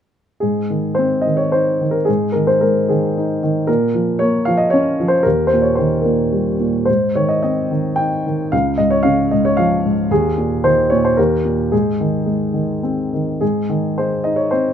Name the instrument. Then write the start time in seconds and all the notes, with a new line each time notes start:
grand piano
0.40 G#2 G#4
0.70 D#3
0.95 C4 C5
1.22 D#5
1.26 D#3
1.37 C#5
1.52 D#4 C5
1.81 D#3
1.91 A#4
2.05 G#2 G#4
2.32 D#3 A#4
2.47 C5
2.61 G#3 A#4
2.89 D#3 G#4
3.17 D#4
3.43 D#3
3.67 A#2 A#4
3.95 F3
4.19 A#3 C#5
4.45 F3 F5
4.57 D#5
4.70 C#4 C#5
5.00 F3
5.08 C5
5.23 D#2 A#4
5.47 C5
5.53 A#2
5.62 C#5
5.75 D#3 C5
6.02 A#2 A#4
6.33 G3
6.60 A#2
6.85 G#2 C5
7.15 D#3 C#5
7.29 D#5
7.43 C4 D#5
7.71 D#3
7.96 D#4 G5
8.26 D#3
8.52 C#2 F5
8.78 G#2 D#5
8.90 C#5
9.03 C#3 F5
9.31 G#2 D#5
9.45 C#5
9.57 F3 F5
9.85 G#2
10.11 D#2 G#4
10.38 A#2
10.64 D#3 C5
10.90 A#2 C#5
11.05 C5
11.17 D#2 A#4
11.45 A#2
11.72 G#2 G#4
12.00 D#3
12.26 G#3
12.54 D#3
12.83 C4
13.13 D#3
13.41 G#2 G#4
13.69 D#3
13.98 G#3 C5
14.24 D#4 D#5
14.36 C#5
14.51 C4 C5